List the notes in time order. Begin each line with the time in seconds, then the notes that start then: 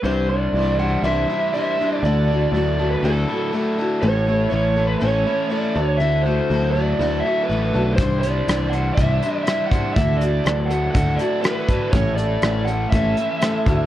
0.04 C2 C3 E3 G3 D4 E4 C5
0.29 G3 D4 E4 C5 D5
0.53 C2 E3 G3 D4 E4
0.58 C5
0.79 G3 D4 E4 C5 F#5
1.03 C2 C3 E3 G3 D4 E4 C5 E5
1.30 G3 D4 E4 C5
1.54 G3 D4 E4 C5 E5
1.79 G3 D4 E4 C5
2.03 D2 D3 A3 E4 F#4 A4 D5
2.28 A3 F#4 A4
2.33 E4
2.52 D2 F#3 A3 E4 D5
2.57 F#4 A4
2.78 A3 E4 F#4 A4
2.91 B4
3.03 D2 D3 A3 D4 E4 F#4 A4
3.27 E4 F#4 A4
3.32 E4
3.53 A3 E4 F#4 A4
3.78 D4 E4 F#4 A4
4.01 A1 A2 E3 A3 C#4 E4 A4 C#5
4.26 A3 C#4 E4 A4
4.49 A1 E3 A3 C#4 E4 A4 C#5
4.76 A3 C#4 E4 A4
4.87 B4
4.99 A1 A2 E3 A3 C#4 E4 A4 C#5
5.26 A3 C#4 E4 A4
5.50 A3 C#4 E4 A4 D5
5.75 D2 D3 E4 F#4 A4
5.85 C#5
5.98 D3 A3 E4 E5
6.02 F#4 A4
6.22 A3 A4 C5
6.27 E4 F#4
6.50 D2 F#3 A3 E4 F#4 A4
6.72 A3 D5
6.76 E4 F#4 A4
6.99 D2 D3 A3 D4 E4 F#4 A4
7.20 E5
7.25 E4 F#4 A4
7.43 B4
7.50 A1 A3 E4 F#4 A4
7.74 B1 D4 E4 F#4 A4
7.94 C3 E3 C5, closed hi-hat
7.98 C2 G3 D4 E4 C5, kick
8.20 C5 D5, closed hi-hat
8.26 G3 D4 E4
8.48 C2 E3 G3 D4 E4 C5, cross-stick, closed hi-hat
8.70 G3 F#5, closed hi-hat
8.74 G3 D4 E4 C5
8.94 C2 C3 E5, kick, closed hi-hat
8.98 E3 G3 D4 E4 C5
9.22 G3 D4 E4 C5, closed hi-hat
9.43 G3 D4 E5, closed hi-hat
9.48 E4 C5, cross-stick
9.67 F#5
9.71 G3 D4 E4 C5, kick, closed hi-hat
9.93 D2 D3 A3 E4 F#4 E5, kick, closed hi-hat
9.97 A4
10.17 A4 D5
10.21 A3 E4 F#4, closed hi-hat
10.44 D2 F#3 A3 E4 F#4 A4, cross-stick, closed hi-hat
10.66 A3 F#5
10.70 E4 F#4 A4, closed hi-hat
10.92 D2 D3 A3 D4 E4 F#4 F#5, kick, closed hi-hat
10.96 A4
11.16 F#4 A4 D5, closed hi-hat
11.21 E4
11.42 A3 E4 F#4 A4 B4, cross-stick, closed hi-hat
11.69 D4 E4 F#4 A4, kick, closed hi-hat
11.91 A1 A2 E3 A3 C#4 E4 A4 C#5, kick, closed hi-hat
12.15 C#4 E4 A4 D5, closed hi-hat
12.20 A3
12.42 A1 E3 A3 C#4 E4 A4, cross-stick, closed hi-hat
12.65 C#4 E4 A4 F#5, closed hi-hat
12.70 A3
12.90 A1 A2 E3 E5, kick, closed hi-hat
12.94 A3 C#4 E4 A4
13.17 A3 C#4 E4 A4, closed hi-hat
13.41 A3 C#4 E4 A4, cross-stick, closed hi-hat
13.66 D2 D3 E4 F#4 A4, kick, closed hi-hat